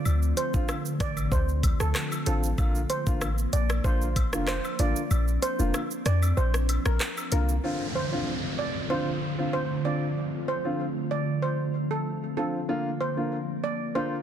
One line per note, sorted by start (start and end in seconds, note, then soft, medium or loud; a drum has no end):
0.00 2.54 D3 medium
0.00 7.59 F3 medium
0.00 2.54 A3 medium
0.00 2.54 C4 medium
0.00 2.54 F4 medium
0.05 0.33 D2 loud
0.05 high woodblock medium
0.05 shaker medium
0.23 shaker medium
0.37 0.50 C5 medium
0.37 closed hi-hat medium
0.37 cabasa medium
0.37 shaker medium
0.54 0.67 A1 medium
0.54 0.72 D3 medium
0.54 0.72 C4 medium
0.54 0.72 F4 medium
0.54 kick medium
0.54 shaker medium
0.69 cross-stick medium
0.69 high woodblock medium
0.69 shaker medium
0.85 shaker medium
1.00 1.27 A1 loud
1.00 1.13 D5 medium
1.00 kick loud
1.00 cross-stick medium
1.00 closed hi-hat medium
1.00 cabasa medium
1.00 shaker medium
1.17 high woodblock medium
1.17 shaker medium
1.32 1.73 D2 loud
1.32 1.44 C5 medium
1.32 kick loud
1.32 shaker medium
1.49 shaker medium
1.63 kick medium
1.63 closed hi-hat medium
1.63 cabasa medium
1.63 high woodblock medium
1.63 shaker medium
1.80 1.93 D2 medium
1.80 1.91 A4 medium
1.80 cross-stick medium
1.80 shaker medium
1.95 cross-stick medium
1.95 clap loud
1.95 shaker medium
2.12 high woodblock medium
2.12 shaker medium
2.26 2.54 A1 medium
2.26 2.46 D3 medium
2.26 2.46 C4 medium
2.26 2.46 F4 medium
2.26 2.39 A4 medium
2.26 closed hi-hat medium
2.26 cabasa medium
2.26 shaker medium
2.44 shaker loud
2.58 2.85 A#1 loud
2.58 2.78 D3 loud
2.58 2.78 A#3 medium
2.58 5.09 A#3 medium
2.58 7.60 D4 loud
2.58 2.78 F4 loud
2.58 kick loud
2.58 high woodblock medium
2.58 shaker medium
2.75 shaker medium
2.90 3.02 C5 medium
2.90 closed hi-hat medium
2.90 cabasa medium
2.90 shaker medium
3.06 3.46 A1 medium
3.06 3.24 D3 medium
3.06 3.25 A#3 medium
3.06 3.25 F4 medium
3.06 kick medium
3.06 shaker medium
3.21 cross-stick medium
3.21 high woodblock medium
3.21 shaker medium
3.38 shaker medium
3.53 3.80 A#1 loud
3.53 3.65 D5 medium
3.53 closed hi-hat medium
3.53 cabasa medium
3.53 shaker medium
3.70 cross-stick loud
3.70 high woodblock medium
3.70 shaker medium
3.84 4.34 A#1 loud
3.84 4.04 D3 medium
3.84 4.04 A#3 medium
3.84 4.04 F4 loud
3.84 4.30 C5 loud
3.84 kick loud
3.84 shaker medium
4.01 shaker medium
4.16 kick medium
4.16 closed hi-hat medium
4.16 cabasa medium
4.16 high woodblock medium
4.16 shaker medium
4.33 4.60 F1 medium
4.33 4.51 D3 medium
4.33 4.51 A#3 medium
4.33 4.51 F4 medium
4.33 cross-stick medium
4.33 shaker medium
4.47 4.60 C5 medium
4.47 cross-stick loud
4.47 clap medium
4.47 shaker medium
4.64 high woodblock medium
4.64 shaker medium
4.79 4.94 A1 medium
4.79 4.99 D3 medium
4.79 4.99 A#3 medium
4.79 4.99 F4 medium
4.79 4.92 D5 medium
4.79 closed hi-hat medium
4.79 cabasa medium
4.79 shaker medium
4.96 shaker medium
5.11 5.38 A#1 loud
5.11 7.61 C4 medium
5.11 high woodblock medium
5.11 shaker medium
5.28 shaker medium
5.42 5.55 C5 medium
5.42 closed hi-hat medium
5.42 cabasa medium
5.42 shaker medium
5.59 5.72 F1 medium
5.59 5.77 D3 medium
5.59 5.77 A#3 medium
5.59 5.77 F4 medium
5.59 shaker medium
5.74 cross-stick medium
5.74 high woodblock medium
5.74 shaker medium
5.91 shaker medium
6.06 6.33 F2 medium
6.06 6.18 D5 medium
6.06 cross-stick medium
6.06 closed hi-hat medium
6.06 cabasa medium
6.06 shaker medium
6.22 high woodblock medium
6.22 shaker medium
6.37 6.78 A#1 loud
6.37 6.50 C5 medium
6.37 shaker medium
6.54 cross-stick loud
6.54 shaker medium
6.69 closed hi-hat medium
6.69 cabasa medium
6.69 high woodblock medium
6.69 shaker medium
6.86 6.98 A#1 medium
6.86 6.97 A#4 medium
6.86 cross-stick loud
6.86 shaker medium
7.00 cross-stick medium
7.00 clap loud
7.00 shaker medium
7.17 high woodblock medium
7.17 shaker medium
7.32 7.59 C2 loud
7.32 7.51 D3 medium
7.32 7.51 A#3 medium
7.32 7.52 F4 medium
7.32 7.45 A#4 medium
7.32 closed hi-hat medium
7.32 cabasa medium
7.32 shaker medium
7.49 shaker medium
7.63 7.83 D3 medium
7.63 12.65 D3 medium
7.63 14.22 F3 medium
7.63 12.65 A3 medium
7.63 7.83 C4 medium
7.63 12.65 C4 medium
7.63 12.65 F4 medium
7.63 7.83 F4 medium
7.63 downlifter medium
7.95 8.08 C5 medium
8.12 8.30 D3 medium
8.12 8.30 C4 medium
8.12 8.30 F4 medium
8.59 8.71 D5 medium
8.90 9.09 D3 medium
8.90 9.09 C4 medium
8.90 9.10 F4 loud
8.90 9.35 C5 medium
9.38 9.56 D3 medium
9.38 9.56 C4 medium
9.38 9.56 F4 medium
9.53 9.66 C5 medium
9.84 10.04 D3 medium
9.84 10.04 C4 medium
9.84 10.04 F4 medium
9.84 9.97 D5 medium
10.48 10.60 C5 medium
10.64 10.82 D3 medium
10.64 10.83 C4 medium
10.64 10.83 F4 medium
11.11 11.23 D5 medium
11.42 11.55 C5 medium
11.91 12.02 A4 medium
12.37 12.57 D3 medium
12.37 12.57 C4 medium
12.37 12.57 F4 medium
12.37 12.49 A4 medium
12.68 12.88 D3 medium
12.68 14.22 A#3 medium
12.68 12.88 A#3 medium
12.68 14.22 D4 medium
12.68 12.88 F4 loud
13.01 13.13 C5 medium
13.17 13.35 D3 medium
13.17 13.35 A#3 medium
13.17 13.35 F4 medium
13.64 13.76 D5 medium
13.95 14.14 D3 medium
13.95 14.15 A#3 medium
13.95 14.15 F4 loud
13.95 14.22 C5 medium